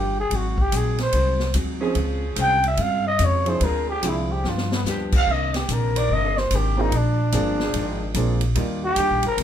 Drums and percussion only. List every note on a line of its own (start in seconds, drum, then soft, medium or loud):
0.31 kick soft
0.31 ride medium
0.58 kick medium
0.72 kick soft
0.72 hi-hat pedal medium
0.72 ride medium
0.98 snare medium
0.98 ride medium
1.12 kick soft
1.12 ride medium
1.40 snare medium
1.54 kick soft
1.54 hi-hat pedal medium
1.54 ride medium
1.95 kick soft
1.95 ride medium
2.36 kick soft
2.36 hi-hat pedal medium
2.36 ride medium
2.64 ride soft
2.77 kick soft
2.77 ride medium
3.19 kick soft
3.19 hi-hat pedal medium
3.19 ride medium
3.46 ride soft
3.61 kick soft
3.61 ride medium
4.03 kick soft
4.03 hi-hat pedal medium
4.03 ride medium
4.44 snare medium
4.58 snare medium
4.72 snare loud
4.86 snare medium
4.86 hi-hat pedal medium
5.12 kick medium
5.12 crash medium
5.27 kick soft
5.54 snare medium
5.54 ride soft
5.69 kick soft
5.69 hi-hat pedal medium
5.69 ride medium
5.96 ride medium
6.10 kick soft
6.37 snare soft
6.51 kick soft
6.51 hi-hat pedal medium
6.51 ride medium
6.92 kick soft
6.92 ride medium
7.32 kick soft
7.32 hi-hat pedal medium
7.32 ride medium
7.60 snare medium
7.74 kick soft
7.74 ride medium
8.14 kick soft
8.14 hi-hat pedal medium
8.14 ride medium
8.41 ride medium
8.55 kick soft
8.55 ride medium
8.96 kick soft
8.96 hi-hat pedal medium
8.96 ride medium
9.23 ride medium
9.38 kick soft
9.38 ride medium